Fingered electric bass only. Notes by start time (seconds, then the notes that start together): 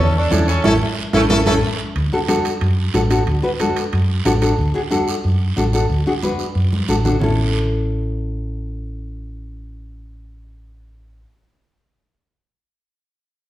0.00 E2
0.32 E2
0.65 A1
1.14 A1
1.30 A1
1.47 A1
1.96 D2
2.62 F#2
2.95 A1
3.27 D2
3.93 F#2
4.26 A1
4.59 D2
5.25 F#2
5.58 A1
5.90 D2
6.55 F#2
6.89 A1
7.22 A1